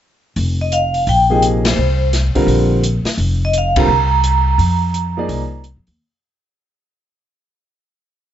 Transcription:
0.36 F1, open hi-hat
0.61 D#5
0.72 F5, closed hi-hat
0.94 open hi-hat
1.07 A#1 G5, open hi-hat
1.30 C3 F3 A#3 D#4 G#4
1.42 closed hi-hat
1.65 snare, ride
1.69 C5
1.77 C2
2.13 snare, closed hi-hat
2.35 D3 G3 C4 F4 A#4, muted upright bass stroke, kick, open hi-hat
2.47 A#1, open hi-hat
2.83 closed hi-hat
3.04 muted upright bass stroke, snare, open hi-hat
3.18 F1, open hi-hat
3.45 D#5
3.53 closed hi-hat
3.58 F5
3.76 D3 G3 C4 F4 A#4 A#5, kick, ride
3.88 C2
4.24 closed hi-hat
4.58 F2, open hi-hat
4.94 closed hi-hat
5.17 F3 A#3 D#4 G#4 D5
5.28 C2, open hi-hat
5.64 closed hi-hat
5.77 F2
5.87 D#2, open hi-hat

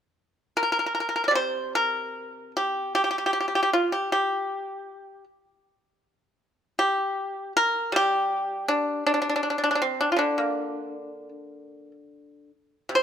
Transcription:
0.57 A#4
0.63 A#4
0.72 A#4
0.79 A#4
0.86 A#4
0.95 A#4
1.00 A#4
1.09 A#4
1.16 A#4
1.24 A#4 D5
1.31 C3
1.35 C5
1.75 A#4
2.57 G4
2.95 G4
3.04 G4
3.11 G4
3.18 G4
3.26 G4
3.33 G4
3.40 G4
3.48 G4
3.55 G4
3.63 G4
3.73 F4
3.92 G4
4.12 G4
6.79 G4
7.57 A#4
7.92 G3 G4
8.68 D4
9.07 D4
9.14 D4
9.22 D4
9.29 D4
9.36 D4
9.43 D4
9.50 D4
9.58 D4
9.64 D4
9.71 D4
9.75 D4
9.82 C4
10.01 D4
10.12 F4
10.17 D3 D4
10.38 A#3
12.89 C3
12.95 C5

